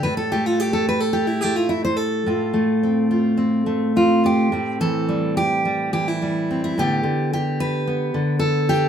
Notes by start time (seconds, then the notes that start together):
Already playing: G3
0.03 A2 B4
0.17 A4
0.32 A3 G4
0.46 F4
0.60 G4
0.73 A4
0.89 B4
1.00 A4
1.13 G4
1.27 E4
1.41 A3 G4
1.56 F4
1.69 E4
1.85 C5
1.96 A4
2.26 A2 F4
2.54 A3
2.83 C4
3.11 F4
3.37 C4
3.66 A3
3.96 C4 F4
4.24 F4 G4
4.52 A2 C4
4.81 E3 A4
5.09 G3
5.37 G4
5.65 G3
5.93 E3 G4
6.08 E4
6.22 G3
6.51 C4
6.64 E4
6.78 A2 D3 B3 G4
7.03 D3
7.33 G4
7.60 B4
7.87 B3
8.14 D3
8.39 A4
8.69 G4